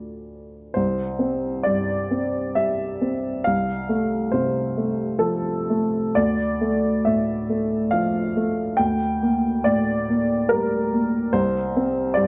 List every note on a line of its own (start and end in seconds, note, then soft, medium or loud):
0.00 0.70 D2 soft
0.00 0.71 F3 soft
0.00 0.72 A3 soft
0.00 0.72 D4 soft
0.74 3.41 C2 soft
0.74 1.66 C5 medium
1.19 1.93 C4 soft
1.63 2.39 G2 soft
1.63 2.55 D5 medium
2.11 2.83 C4 soft
2.55 3.27 G3 soft
2.55 3.45 E5 medium
3.01 3.45 C4 soft
3.44 6.13 C2 soft
3.44 4.33 F5 medium
3.89 4.60 A3 soft
4.32 5.04 C3 soft
4.32 5.21 C5 medium
4.77 5.50 A3 soft
5.19 5.97 F3 soft
5.19 6.15 A4 medium
5.70 6.17 A3 soft
6.15 8.75 D2 soft
6.15 7.04 D5 medium
6.61 7.31 A3 soft
7.05 7.76 A2 soft
7.05 7.92 E5 medium
7.49 8.19 A3 soft
7.91 8.62 F3 soft
7.91 8.79 F5 medium
8.36 8.80 A3 soft
8.77 11.31 D2 soft
8.77 9.65 G5 medium
9.22 9.91 A#3 soft
9.64 10.35 A2 soft
9.64 10.51 D5 medium
10.09 10.77 A#3 soft
10.49 11.18 G3 soft
10.49 11.34 A#4 medium
10.93 11.35 A#3 soft
11.33 12.27 C2 soft
11.33 12.18 C5 medium
11.77 12.27 C4 soft
12.14 12.27 G2 soft
12.14 12.27 D5 medium